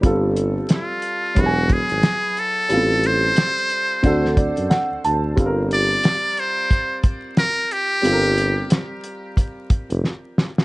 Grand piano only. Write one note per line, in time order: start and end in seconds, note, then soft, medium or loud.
0.02 1.33 G3 medium
0.02 1.34 C4 medium
0.02 1.35 F4 medium
0.06 1.36 A4 medium
1.35 2.67 F#3 medium
1.35 2.68 B3 medium
1.35 2.68 E4 medium
1.39 1.46 G4 medium
1.46 2.72 G#5 medium
2.69 4.00 G3 medium
2.69 2.78 B3 soft
2.69 4.02 F4 medium
2.73 4.01 C4 medium
2.73 4.03 A4 medium
4.03 5.34 C4 medium
4.03 5.35 D4 medium
4.03 5.35 F#4 medium
4.07 5.36 A4 medium
4.37 4.68 D5 medium
4.70 5.01 F#5 medium
5.05 5.35 A5 medium
5.36 7.99 G3 medium
5.36 8.00 C4 medium
5.36 8.00 F4 medium
5.36 5.46 A4 medium
5.46 8.04 A#4 medium
8.02 10.65 G3 medium
8.02 10.65 C4 medium
8.02 10.65 F4 medium
8.06 8.13 A4 medium
8.12 10.65 A#4 medium